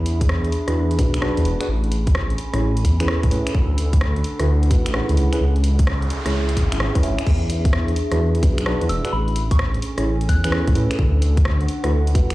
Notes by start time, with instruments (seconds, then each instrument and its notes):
Already playing: detuned saw bass E2, ambient pad D4 G#4 E5 B5
0.06 open hi-hat
0.21 kick, closed hi-hat
0.29 cross-stick
0.45 closed hi-hat
0.52 open hi-hat
0.67 detuned saw bass E2, tine electric piano D4 F#4 G#4 B4, cross-stick, closed hi-hat
0.91 closed hi-hat
0.99 detuned saw bass B1, tine electric piano D4 F#4 G#4 B4, kick, open hi-hat
1.14 detuned saw bass B1, finger snap, closed hi-hat
1.22 tine electric piano D4 F#4 G#4 B4, cross-stick
1.37 detuned saw bass E2, closed hi-hat
1.45 detuned saw bass E1, open hi-hat
1.61 tine electric piano D4 F#4 G#4 B4, finger snap, closed hi-hat
1.68 detuned saw bass A1, ambient pad C#4
1.84 ambient pad G#5, closed hi-hat
1.92 open hi-hat
2.07 ambient pad A4, kick, closed hi-hat
2.15 cross-stick
2.30 closed hi-hat
2.38 open hi-hat
2.53 detuned saw bass A1, tine electric piano C#4 E4 G#4 C#5, cross-stick, closed hi-hat
2.77 closed hi-hat
2.85 detuned saw bass E2, kick, open hi-hat
3.00 detuned saw bass E2, tine electric piano C#4 E4 G#4 B4, finger snap, closed hi-hat
3.08 cross-stick
3.23 detuned saw bass A1, kick, closed hi-hat
3.31 detuned saw bass A2, tine electric piano C#4 E4 G#4 B4, open hi-hat
3.47 finger snap, closed hi-hat
3.54 detuned saw bass D2, ambient pad D4, kick
3.78 open hi-hat
3.93 kick, closed hi-hat
4.01 cross-stick
4.05 ambient pad F#5
4.16 closed hi-hat
4.24 open hi-hat
4.40 detuned saw bass D2, tine electric piano E4 F#4 A4 B4, cross-stick, closed hi-hat
4.63 closed hi-hat
4.71 detuned saw bass A1, tine electric piano E4 F#4 A4 B4, kick, open hi-hat
4.86 detuned saw bass A1, finger snap, closed hi-hat
4.94 tine electric piano C#4 E4 G#4 B4, cross-stick
5.09 detuned saw bass D2, closed hi-hat
5.17 detuned saw bass C#2, ambient pad C#4, open hi-hat
5.33 tine electric piano C#4 E4 G#4 B4, finger snap, closed hi-hat
5.40 detuned saw bass C#2, ambient pad G#4, noise sweep
5.56 closed hi-hat
5.60 ambient pad E5, open hi-hat
5.79 kick, closed hi-hat
5.87 cross-stick
6.02 closed hi-hat
6.10 open hi-hat
6.25 detuned saw bass C#2, tine electric piano C#4 E4 G#4 C#5, cross-stick, closed hi-hat
6.49 closed hi-hat
6.57 detuned saw bass G#1, kick, open hi-hat
6.72 detuned saw bass G#1, tine electric piano C#4 E4 G#4 E5, finger snap, closed hi-hat
6.80 cross-stick
6.95 detuned saw bass C#2, tine electric piano C#4 E4 G#4 B4, kick, closed hi-hat
7.03 detuned saw bass G#1, tine electric piano C#4 E4 G#4 E5, open hi-hat
7.19 finger snap, closed hi-hat
7.26 detuned saw bass E2, ambient pad D4, kick, crash
7.50 open hi-hat
7.65 kick, closed hi-hat
7.73 cross-stick
7.88 closed hi-hat
7.96 open hi-hat
8.12 detuned saw bass E2, tine electric piano D4 F#4 G#4 B4, cross-stick, closed hi-hat
8.35 closed hi-hat
8.43 detuned saw bass B1, tine electric piano D4 F#4 G#4 B4, kick, open hi-hat
8.58 detuned saw bass B1, finger snap, closed hi-hat
8.66 tine electric piano D4 F#4 G#4 B4, cross-stick
8.81 detuned saw bass E2, closed hi-hat
8.89 detuned saw bass E1, synth bell E6, open hi-hat
9.05 tine electric piano D4 F#4 G#4 B4, finger snap, closed hi-hat
9.13 detuned saw bass A1, ambient pad C#4, synth bell B5
9.28 closed hi-hat
9.32 ambient pad A4, open hi-hat
9.51 synth bell C#6, kick, closed hi-hat
9.55 ambient pad G#5, cross-stick
9.74 closed hi-hat
9.82 open hi-hat
9.97 detuned saw bass A1, tine electric piano C#4 E4 G#4 C#5, cross-stick, closed hi-hat
10.21 closed hi-hat
10.29 detuned saw bass E2, synth bell F#6, kick, open hi-hat
10.44 detuned saw bass E2, tine electric piano C#4 E4 G#4 B4, synth bell F#6, finger snap, closed hi-hat
10.52 cross-stick
10.67 detuned saw bass A1, kick, closed hi-hat
10.75 detuned saw bass A2, tine electric piano C#4 E4 G#4 B4, open hi-hat
10.91 finger snap, closed hi-hat
10.99 detuned saw bass D2, ambient pad D4, kick
11.20 ambient pad F#5, open hi-hat
11.37 kick, closed hi-hat
11.45 cross-stick
11.61 closed hi-hat
11.68 open hi-hat
11.84 detuned saw bass D2, tine electric piano E4 F#4 A4 B4, cross-stick, closed hi-hat
12.07 closed hi-hat
12.15 detuned saw bass A1, tine electric piano E4 F#4 A4 B4, kick, open hi-hat
12.30 detuned saw bass A1, finger snap, closed hi-hat